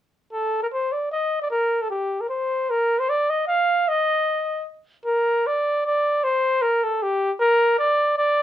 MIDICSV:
0, 0, Header, 1, 2, 480
1, 0, Start_track
1, 0, Key_signature, -2, "major"
1, 0, Tempo, 395778
1, 386, Time_signature, 3, 2, 24, 8
1, 6618, Tempo, 388601
1, 10284, End_track
2, 0, Start_track
2, 0, Title_t, "Flugelhorn"
2, 0, Program_c, 0, 56
2, 391, Note_on_c, 0, 69, 65
2, 733, Note_off_c, 0, 69, 0
2, 759, Note_on_c, 0, 70, 55
2, 811, Note_off_c, 0, 70, 0
2, 882, Note_on_c, 0, 72, 61
2, 1117, Note_on_c, 0, 74, 54
2, 1135, Note_off_c, 0, 72, 0
2, 1347, Note_off_c, 0, 74, 0
2, 1354, Note_on_c, 0, 75, 65
2, 1696, Note_off_c, 0, 75, 0
2, 1720, Note_on_c, 0, 74, 58
2, 1773, Note_off_c, 0, 74, 0
2, 1826, Note_on_c, 0, 70, 75
2, 2202, Note_on_c, 0, 69, 60
2, 2221, Note_off_c, 0, 70, 0
2, 2300, Note_off_c, 0, 69, 0
2, 2308, Note_on_c, 0, 67, 59
2, 2677, Note_on_c, 0, 70, 50
2, 2695, Note_off_c, 0, 67, 0
2, 2775, Note_off_c, 0, 70, 0
2, 2783, Note_on_c, 0, 72, 67
2, 3276, Note_on_c, 0, 70, 77
2, 3294, Note_off_c, 0, 72, 0
2, 3628, Note_on_c, 0, 72, 74
2, 3646, Note_off_c, 0, 70, 0
2, 3751, Note_on_c, 0, 74, 75
2, 3769, Note_off_c, 0, 72, 0
2, 3997, Note_on_c, 0, 75, 67
2, 4016, Note_off_c, 0, 74, 0
2, 4205, Note_off_c, 0, 75, 0
2, 4213, Note_on_c, 0, 77, 75
2, 4711, Note_on_c, 0, 75, 80
2, 4729, Note_off_c, 0, 77, 0
2, 5661, Note_off_c, 0, 75, 0
2, 6130, Note_on_c, 0, 70, 72
2, 6627, Note_on_c, 0, 74, 75
2, 6646, Note_off_c, 0, 70, 0
2, 7107, Note_off_c, 0, 74, 0
2, 7113, Note_on_c, 0, 74, 75
2, 7580, Note_on_c, 0, 72, 85
2, 7599, Note_off_c, 0, 74, 0
2, 8050, Note_on_c, 0, 70, 75
2, 8069, Note_off_c, 0, 72, 0
2, 8323, Note_on_c, 0, 69, 66
2, 8341, Note_off_c, 0, 70, 0
2, 8555, Note_on_c, 0, 67, 71
2, 8573, Note_off_c, 0, 69, 0
2, 8912, Note_off_c, 0, 67, 0
2, 9013, Note_on_c, 0, 70, 96
2, 9459, Note_off_c, 0, 70, 0
2, 9495, Note_on_c, 0, 74, 85
2, 9942, Note_off_c, 0, 74, 0
2, 9978, Note_on_c, 0, 74, 86
2, 10284, Note_off_c, 0, 74, 0
2, 10284, End_track
0, 0, End_of_file